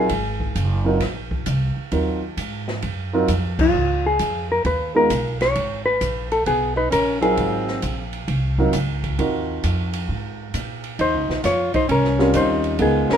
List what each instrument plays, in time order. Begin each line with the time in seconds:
Already playing: hollow-body jazz guitar G#4
0.09 upright bass G#1, kick, ride
0.40 kick
0.55 upright bass F#1, kick, hi-hat pedal, ride
0.85 grand piano F#3 C4 D#4 F4 A#4
1.00 upright bass A#1, kick, snare, ride
1.31 kick
1.46 upright bass C2, kick, hi-hat pedal, ride
1.76 muted upright bass stroke
1.91 upright bass D#2, grand piano F#3 C4 D#4 F4 A#4, kick, ride
2.37 upright bass G#2, kick, hi-hat pedal, ride
2.68 snare
2.82 upright bass F#2, kick, ride
3.13 grand piano F#3 C4 D#4 F4 A#4
3.28 upright bass F2, kick, hi-hat pedal, ride
3.59 hollow-body jazz guitar F4, kick, crash
3.74 upright bass C#2
4.06 hollow-body jazz guitar G#4
4.19 upright bass F2, kick, hi-hat pedal, ride
4.52 hollow-body jazz guitar A#4
4.65 upright bass D#2, hollow-body jazz guitar B4, kick, ride
4.95 grand piano G#3 B3 D#4 F4 A#4, hollow-body jazz guitar A#4
5.10 upright bass B1, kick, hi-hat pedal, ride
5.41 hollow-body jazz guitar C#5, snare, ride
5.55 upright bass G#1, kick, ride
5.86 hollow-body jazz guitar B4
6.01 upright bass A#1, kick, hi-hat pedal, ride
6.32 hollow-body jazz guitar A4, ride
6.46 upright bass B1, alto saxophone B3, hollow-body jazz guitar G#4, kick, ride
6.76 alto saxophone D#4, hollow-body jazz guitar B4
6.90 upright bass A#1, alto saxophone C#4, hollow-body jazz guitar A#4, kick, hi-hat pedal, ride
7.21 grand piano F#3 C4 D#4 F4 A#4, alto saxophone C4, hollow-body jazz guitar G#4, ride
7.37 upright bass G#1, kick, ride
7.68 snare
7.82 upright bass A#1, kick, hi-hat pedal, ride
8.13 ride
8.28 upright bass C2, kick, ride
8.58 grand piano F#3 C4 D#4 F4 A#4, kick
8.73 upright bass C#2, hi-hat pedal, ride
9.04 kick, ride
9.19 upright bass D#2, grand piano C4 D#4 F4 F#4 A#4, kick, ride
9.64 upright bass F2, kick, hi-hat pedal, ride
9.93 ride
10.09 upright bass G#2, kick
10.54 upright bass A#2, kick, hi-hat pedal, ride
10.84 ride
10.99 upright bass D#2, alto saxophone D#4, hollow-body jazz guitar C5, kick, ride
11.14 upright bass C#2
11.29 upright bass A#1, snare
11.43 upright bass F2, alto saxophone F4, hollow-body jazz guitar C#5, kick, snare, hi-hat pedal, ride
11.74 alto saxophone D#4, hollow-body jazz guitar C5, muted upright bass stroke, kick, ride
11.89 upright bass C2, alto saxophone C#4, hollow-body jazz guitar A#4, kick, ride
12.04 snare
12.19 grand piano G3 C4 C#4 F4 A#4, snare
12.34 upright bass D#2, alto saxophone D#4, hollow-body jazz guitar C5, kick, hi-hat pedal, ride
12.64 ride
12.79 upright bass C#2, grand piano G#3 B3 D#4 F4 A#4, alto saxophone B3, hollow-body jazz guitar G#4, kick, ride
13.10 alto saxophone C#4, hollow-body jazz guitar A#4, muted upright bass stroke, snare